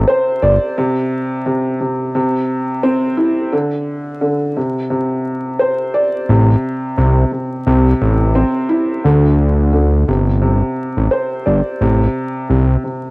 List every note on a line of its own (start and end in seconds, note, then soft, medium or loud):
0.00 0.78 C3 medium
0.08 0.77 C5 loud
0.42 0.58 G1 medium
0.42 0.77 D5 medium
0.78 1.44 C3 loud
1.46 1.79 C3 medium
1.81 2.13 C3 medium
2.15 3.53 C3 medium
2.83 3.52 C4 loud
3.17 3.52 E4 medium
3.53 4.20 D3 medium
4.21 4.56 D3 medium
4.56 4.88 C3 medium
4.90 6.28 C3 medium
5.59 6.28 C5 loud
5.94 6.29 D5 medium
6.29 6.56 A1 loud
6.29 6.96 C3 loud
6.97 7.25 C2 loud
6.97 7.31 C3 medium
7.32 7.65 C3 medium
7.67 7.94 C2 loud
7.67 9.04 C3 loud
8.02 8.44 A1 medium
8.35 9.04 C4 loud
8.69 9.04 E4 medium
9.04 10.04 D2 loud
9.04 9.71 D3 medium
9.73 10.07 D3 medium
10.08 10.62 G1 loud
10.08 10.40 C3 medium
10.42 11.80 C3 medium
10.97 11.09 A1 medium
11.11 11.80 C5 medium
11.46 11.62 G1 medium
11.46 11.80 D5 medium
11.81 12.08 A1 loud
11.81 12.48 C3 medium
12.49 12.77 C2 loud
12.49 12.83 C3 medium
12.84 13.11 C3 medium